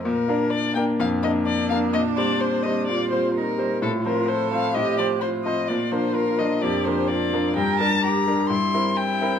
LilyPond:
<<
  \new Staff \with { instrumentName = "Violin" } { \time 4/4 \key bes \major \tempo 4 = 127 bes'4 d''8 g''8 f''8 ees''8 d''8 f''8 | ees''8 d''8 c''8 ees''8 d''8 c''8 bes'4 | a'8 bes'8 c''8 f''8 ees''8 d''8 c''8 ees''8 | d''8 c''8 bes'8 ees''8 d''8 c''8 d''4 |
g''8 a''8 bes''4 c'''4 g''4 | }
  \new Staff \with { instrumentName = "Cello" } { \time 4/4 \key bes \major r2 d'2~ | d'2 f'4 ees'4 | f'4 a'4 g'4 f'4 | f'2 g'4 f'4 |
bes'4 g'4 e'4 e'4 | }
  \new Staff \with { instrumentName = "Grand piano" } { \time 4/4 \key bes \major bes,8 <bes d' bes'>4 <bes d' bes'>8 f,8 <bes d' bes'>4 <bes d' bes'>8 | bes,8 <g c' c''>4 <g c' c''>8 bes,8 <g c' c''>4 <g c' c''>8 | a,8 <f c' c''>4 <f c' c''>8 a,8 <f c' c''>4 <f c' c''>8 | bes,8 <f d' bes'>4 <f d' bes'>8 f,8 <f d' bes'>4 <f d' bes'>8 |
g,8 <g d' bes'>4 <g d' bes'>8 g,8 <c' e' bes'>4 <c' e' bes'>8 | }
>>